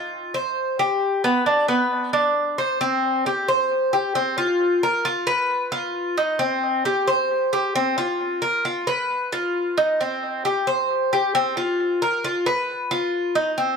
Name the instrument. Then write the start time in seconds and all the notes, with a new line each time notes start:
cuban tres
Already playing: F4
0.34 C5
0.79 G4
1.24 B3
1.46 D4
1.68 B3
2.13 D4
2.58 C5
2.81 C4
3.26 G4
3.48 C5
3.93 G4
4.15 C4
4.38 F4
4.83 A#4
5.05 F4
5.27 B4
5.72 F4
6.18 D#4
6.39 C4
6.85 G4
7.07 C5
7.53 G4
7.75 C4
7.98 F4
8.42 A#4
8.65 F4
8.87 B4
9.32 F4
9.78 D#4
10.01 C4
10.45 G4
10.67 C5
11.13 G4
11.35 C4
11.57 F4
12.02 A#4
12.24 F4
12.46 B4
12.91 F4
13.35 D#4
13.58 C4